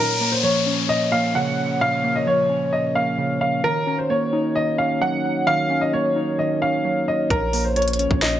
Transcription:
Already playing: A#2 F3 A#3 C#4 A#4 C#5, downlifter
0.20 A#3
0.32 C5
0.43 F3 C#5
0.66 C#4
0.89 A#2 D#5
1.12 A#3 F5
1.35 C#3 F#5
1.81 A#2 F5
2.04 A#3
2.16 D#5
2.27 F3 C#5
2.49 C#4
2.72 A#2 D#5
2.95 A#3 F5
3.18 C#3
3.41 F5
3.64 D#3 A#3 D#4 F#4 A#4 C#5
3.87 C#4
3.99 C5
4.10 A#3 C#5
4.33 D#4
4.55 D#3 D#5
4.78 C#4 F5
5.01 F#3 F#5
5.47 D#3 F5
5.70 C#4
5.81 D#5
5.93 A#3 C#5
6.16 D#4
6.39 D#3 D#5
6.62 C#4 F5
6.85 F#3
7.08 D#5
7.30 A#1 A#2 F3 A#3 C#4 A#4, kick, closed hi-hat
7.53 A#3, open hi-hat
7.65 C5
7.76 F3 C#5, closed hi-hat
7.82 closed hi-hat
7.88 closed hi-hat
7.93 closed hi-hat
7.99 C#4, closed hi-hat
8.11 A#1, kick
8.22 A#2 D#5, snare, closed hi-hat

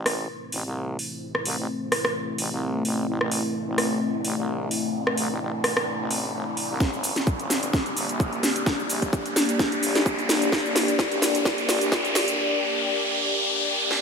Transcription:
Already playing: A1 A3 C4 E4 C5, riser
0.06 cross-stick, open hi-hat
0.52 A1, open hi-hat
0.65 C2
0.99 open hi-hat
1.35 cross-stick
1.45 C2, open hi-hat
1.58 A1
1.92 cross-stick, open hi-hat
2.05 cross-stick
2.38 A1, open hi-hat
2.51 C2
2.85 A1, open hi-hat
3.08 A1 D5
3.21 A1, cross-stick
3.31 open hi-hat
3.67 A1
3.78 cross-stick, open hi-hat
4.24 A1, open hi-hat
4.37 C2
4.71 open hi-hat
5.07 cross-stick
5.17 C2, open hi-hat
5.30 A1
5.41 A1
5.64 cross-stick, open hi-hat
5.77 cross-stick
6.00 A1
6.11 open hi-hat
6.34 G1
6.57 open hi-hat
6.70 C2
6.80 G1 A#3 D4 G4, kick, snare, shaker
6.93 G1, shaker
7.03 open hi-hat, shaker
7.16 snare, closed hi-hat, shaker
7.27 kick, shaker
7.39 G1, closed hi-hat, shaker
7.50 snare, open hi-hat, shaker
7.63 closed hi-hat, shaker
7.73 kick, snare, shaker
7.86 closed hi-hat, shaker
7.97 G1, open hi-hat, shaker
8.09 A#1, closed hi-hat, shaker
8.20 kick, shaker
8.33 closed hi-hat, shaker
8.43 snare, open hi-hat, shaker
8.56 closed hi-hat, shaker
8.66 kick, snare, shaker
8.79 shaker
8.90 A#1, open hi-hat, shaker
9.02 G1, kick, closed hi-hat, shaker
9.13 kick, shaker
9.26 closed hi-hat, shaker
9.36 snare, open hi-hat, shaker
9.49 closed hi-hat, shaker
9.59 kick, snare, shaker
9.72 closed hi-hat, shaker
9.83 G1, open hi-hat, shaker
9.95 A#1, snare, closed hi-hat, shaker
10.06 kick, shaker
10.19 closed hi-hat, shaker
10.29 G1, snare, open hi-hat, shaker
10.42 closed hi-hat, shaker
10.52 kick, snare, shaker
10.65 G1, shaker
10.76 snare, open hi-hat, shaker
10.88 closed hi-hat, shaker
10.99 kick, snare, shaker
11.12 G1, closed hi-hat, shaker
11.22 snare, open hi-hat, shaker
11.35 closed hi-hat, shaker
11.45 kick, snare, shaker
11.58 closed hi-hat, shaker
11.69 snare, open hi-hat, shaker
11.81 A#1, closed hi-hat, shaker
11.92 kick, snare, shaker
12.05 closed hi-hat, shaker
12.15 snare, open hi-hat, shaker
12.28 closed hi-hat, shaker
13.91 snare

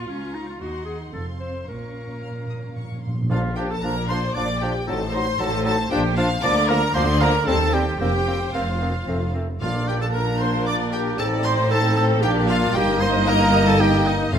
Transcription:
Already playing: F4
0.08 C#2 C#4 F5 A#5 C#6
0.34 D#4
0.48 F4
0.60 D#2 D#4 F#4 F#5 C6
0.86 G#4
1.13 F1 F2 C4 A4 F5 C6
1.40 C5
1.68 A#1 A#2 C#4 A#4 F5 A#5 C#6
1.75 A#2
1.84 A#2
1.92 A#2
1.99 A#2
2.07 A#2
2.15 A#2
2.22 A#2 F6
2.31 A#2
2.38 A#2
2.46 A#2 D#6
2.54 A#2
2.62 A#2
2.69 A#2
2.76 A#2 C#6
2.84 A#2
2.91 A#2
2.99 A#2 C6
3.07 A#2
3.14 A#2
3.22 A#2
3.30 A#1 A#2 F3 A#3 D4 F4 F5
3.56 F3 D4 G4 G5
3.70 A4 A5
3.82 A#1 A#2 F3 D4 A#4 D5 A#5
4.08 F3 D4 C5 C6
4.34 A#1 A#2 F3 D4 D5 D6
4.60 F3 D4 G4 G5
4.87 A1 A2 F#3 C4 D#4 A4 C5 A5
5.13 F#3 D#4 C5 C6
5.39 A1 A2 F#3 D#4 A4 A5
5.65 F#3 D#4 A4 A5
5.91 A#1 A#2 F3 A#3 D4 G4 G5
6.17 F3 D4 F4 F5
6.42 D2 D3 F3 A#3 D4 A#4 D5 D6
6.68 F3 A#3 A#4 A#5
6.94 D2 D3 F3 A#3 C5 D5 C6
7.20 F3 A#3 A#4 A#5
7.47 D#2 D#3 G3 C4 A4 C5 A5
7.72 G3 C4 G4 G5
7.99 F1 F2 A#3 C4 G4 C5 G5
8.27 A#3 C4
8.53 F1 F2 A#3 C4 F4 F5
8.81 A#3 C4
9.07 F1 F2 A3 C4
9.34 A3 C4
9.61 A#1 A#2 A#3 D4 F4 D5 F5
9.88 G4 G5
10.01 A4 A5
10.13 A#4 A#5
10.40 C5 C6
10.66 D5 D6
10.92 G4 G5
11.19 A1 A2 C4 D#4 A4 D5 A5
11.44 C5 C6
11.71 A4 C5 A5
11.96 A4 A5
12.22 A#1 A#2 A#3 D4 G4 D5 G5
12.48 F4 F5
12.74 G1 G2 A#3 D#4 G4 D#5 G5
13.00 C5 C6
13.26 A#3 D#4 A#4 A#5
13.66 A4 A5
13.80 A#3 D#4 G4 G5
14.06 D#4 D#5
14.33 F1 F2 A3 C4 F4 F5

